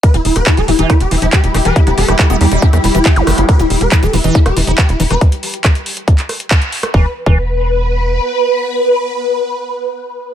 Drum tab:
HH |xxoxxxoxxxoxxxox|xxoxxxoxxxoxxxox|xxoxxxoxxxoxxxox|xxoxxxoxxxoxxxox|
CP |----x-------x---|----x-------x---|----x-------x---|----x----x--x---|
SD |---r----r-----r-|---r-----r----r-|----r----r-----r|----r-----r----r|
BD |o---o---o---o---|o---o---o---o---|o---o---o---o---|o---o---o---o---|

HH |----------------|----------------|
CP |----------------|----------------|
SD |----------------|----------------|
BD |o--o------------|----------------|